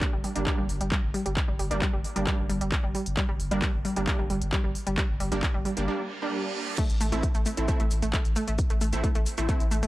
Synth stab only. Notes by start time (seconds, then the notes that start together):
0.35 G3 A#3 D4
0.46 G3 A#3 D4
1.71 G3 A#3 D4
2.16 G3 A#3 D4
2.27 G3 A#3 D4
3.51 G3 A#3 D4
3.96 G3 A#3 D4
4.07 G3 A#3 D4
5.32 G3 A#3 D4
5.77 G3 A#3 D4
5.88 G3 A#3 D4
6.22 G3 A#3 D4
7.12 A3 C4 E4
7.57 A3 C4 E4
7.68 A3 C4 E4
8.93 A3 C4 E4
9.38 A3 C4 E4
9.49 A3 C4 E4